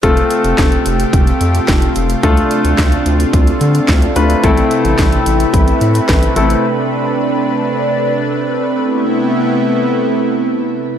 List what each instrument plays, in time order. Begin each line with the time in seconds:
0.03 analog synth bass F1, analog synth pad C3 A3 F4 G4, grand piano A3 C4 F4 A4, kick, closed hi-hat
0.17 closed hi-hat
0.31 closed hi-hat
0.44 analog synth bass F1, closed hi-hat
0.58 analog synth bass F1, kick, snare, clap, closed hi-hat
0.72 closed hi-hat
0.86 analog synth bass F1, closed hi-hat
1.00 closed hi-hat
1.13 analog synth bass F1, kick, closed hi-hat
1.27 closed hi-hat
1.41 analog synth bass F2, closed hi-hat
1.55 closed hi-hat
1.68 analog synth bass F1, kick, snare, clap, closed hi-hat
1.82 closed hi-hat
1.96 analog synth bass F1, closed hi-hat
2.10 closed hi-hat
2.23 analog synth bass D2, grand piano A3 D4 F4 A4, analog synth pad A3 D4, kick, closed hi-hat
2.37 closed hi-hat
2.51 closed hi-hat
2.65 analog synth bass D2, closed hi-hat
2.78 analog synth bass D2, kick, snare, clap, closed hi-hat
2.92 closed hi-hat
3.06 analog synth bass D2, closed hi-hat
3.20 closed hi-hat
3.33 analog synth bass D2, kick, closed hi-hat
3.47 closed hi-hat
3.61 analog synth bass D3, closed hi-hat
3.75 closed hi-hat
3.88 analog synth bass D2, kick, snare, clap, closed hi-hat
4.02 closed hi-hat
4.16 analog synth bass D2, grand piano A3 D4 F4 B4, closed hi-hat
4.30 closed hi-hat
4.44 analog synth bass A1, grand piano A3 C4 E4 A4, analog synth pad E4 B4, kick, closed hi-hat
4.57 closed hi-hat
4.71 closed hi-hat
4.85 analog synth bass A1, closed hi-hat
4.99 analog synth bass A1, kick, snare, clap, closed hi-hat
5.12 closed hi-hat
5.26 analog synth bass A1, closed hi-hat
5.40 closed hi-hat
5.54 analog synth bass A1, kick, closed hi-hat
5.68 closed hi-hat
5.81 analog synth bass A2, closed hi-hat
5.95 closed hi-hat
6.09 analog synth bass A1, kick, snare, clap, closed hi-hat
6.23 closed hi-hat
6.36 analog synth bass A1, grand piano A3 C4 E4 A4, closed hi-hat
6.50 closed hi-hat
6.64 analog synth pad D4
8.84 analog synth pad C3 A3 B3 E4